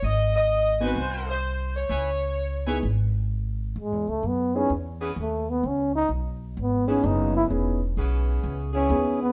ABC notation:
X:1
M:4/4
L:1/8
Q:"Swing" 1/4=129
K:C#m
V:1 name="Saxophone section"
d d2 B ^B B2 c- | c3 z4 z | z8 | z8 |
z8 |]
V:2 name="Trumpet section"
z3 [FB^Bg]3 z2 | [EBcg] z2 [EBcg] z4 | z8 | z8 |
z8 |]
V:3 name="Grand piano"
z3 [B,^B,DF] z4 | z3 [B,DEG] z4 | z3 [B,CDEG] z4 | z4 z [B,CDEG]3 |
[B,CDEG] z4 z [B,CDEG] z |]
V:4 name="Saxophone section"
z8 | z8 | z4 z [E,B,CG] z2 | z4 z [E,B,CG]3 |
z2 [E,B,CG]3 [B,CEG]3 |]
V:5 name="Trombone"
z8 | z8 | G, A, B, C z2 A, B, | C D z2 B, C D E |
z4 z C2 B, |]
V:6 name="Upright bass" clef=bass
G,,,4 ^B,,,4 | C,,4 G,,,4 | (3G,, E,, C,, F,,2 E,,2 D,,2 | C,,2 B,,,2 G,,,2 F,,,2 |
E,,,2 B,,,2 C,,2 D,,2 |]